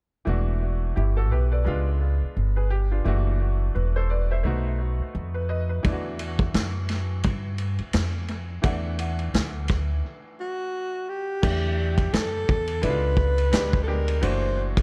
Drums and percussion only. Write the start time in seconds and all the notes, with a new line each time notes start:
5.84 kick, ride
6.19 ride
6.39 kick
6.54 snare, hi-hat pedal, ride
6.89 snare, ride
7.23 kick, ride
7.58 ride
7.79 ride
7.93 snare, hi-hat pedal, ride
8.28 ride
8.63 kick, ride
8.99 ride
9.19 ride
9.34 snare, hi-hat pedal, ride
9.68 kick, snare, ride
11.43 kick, crash
11.98 kick, ride
12.13 snare, hi-hat pedal, ride
12.49 kick
12.67 ride
12.83 ride
13.17 kick
13.38 ride
13.53 snare, hi-hat pedal, ride
13.73 kick
14.08 ride
14.22 ride
14.77 kick, ride